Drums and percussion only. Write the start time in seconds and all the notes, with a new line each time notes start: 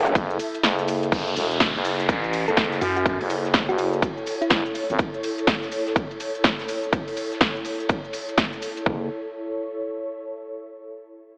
0.06 closed hi-hat, shaker
0.15 kick, closed hi-hat, ride, shaker
0.30 closed hi-hat, shaker
0.39 open hi-hat, ride, shaker
0.55 closed hi-hat, ride, shaker
0.63 snare, closed hi-hat, ride, shaker
0.79 closed hi-hat, shaker
0.88 open hi-hat, ride, shaker
1.03 closed hi-hat, ride, shaker
1.12 kick, closed hi-hat, ride, shaker
1.27 closed hi-hat, shaker
1.36 open hi-hat, ride, shaker
1.51 closed hi-hat, ride, shaker
1.60 kick, snare, closed hi-hat, ride, shaker
1.76 snare, shaker
1.85 open hi-hat, ride, shaker
2.00 snare, closed hi-hat, shaker
2.09 kick, closed hi-hat, ride, shaker
2.24 ride, shaker
2.33 open hi-hat, ride, shaker
2.48 closed hi-hat, shaker
2.57 kick, snare, closed hi-hat, ride, shaker
2.72 snare, closed hi-hat, shaker
2.81 open hi-hat, ride, shaker
2.97 closed hi-hat, shaker
3.06 kick, closed hi-hat, ride, shaker
3.21 open hi-hat, ride, shaker
3.30 open hi-hat, ride, shaker
3.45 snare, closed hi-hat, shaker
3.54 kick, snare, closed hi-hat, ride, shaker
3.69 ride, shaker
3.78 open hi-hat, ride, shaker
3.93 closed hi-hat, shaker
4.02 kick, closed hi-hat, ride, shaker
4.17 shaker
4.27 open hi-hat, ride, shaker
4.42 closed hi-hat, ride, shaker
4.50 kick, snare, closed hi-hat, ride, shaker
4.66 closed hi-hat, shaker
4.75 open hi-hat, ride, shaker
4.90 closed hi-hat, ride, shaker
4.99 kick, closed hi-hat, ride, shaker
5.14 closed hi-hat, shaker
5.23 open hi-hat, ride, shaker
5.38 closed hi-hat, ride, shaker
5.47 kick, snare, closed hi-hat, ride, shaker
5.62 snare, shaker
5.72 open hi-hat, ride, shaker
5.87 snare, closed hi-hat, shaker
5.96 kick, closed hi-hat, ride, shaker
6.11 ride, shaker
6.20 open hi-hat, ride, shaker
6.35 closed hi-hat, shaker
6.44 kick, snare, closed hi-hat, ride, shaker
6.59 snare, closed hi-hat, shaker
6.68 open hi-hat, ride, shaker
6.83 closed hi-hat, shaker
6.93 kick, closed hi-hat, ride, shaker
7.08 open hi-hat, ride, shaker
7.17 open hi-hat, ride, shaker
7.32 snare, closed hi-hat, shaker
7.41 kick, snare, closed hi-hat, ride, shaker
7.55 ride, shaker
7.64 open hi-hat, ride, shaker
7.80 closed hi-hat, shaker
7.89 kick, closed hi-hat, ride, shaker
8.04 shaker
8.13 open hi-hat, ride, shaker
8.29 closed hi-hat, ride, shaker
8.38 kick, snare, closed hi-hat, ride, shaker
8.53 closed hi-hat, shaker
8.62 open hi-hat, ride, shaker
8.77 closed hi-hat, ride, shaker
8.86 kick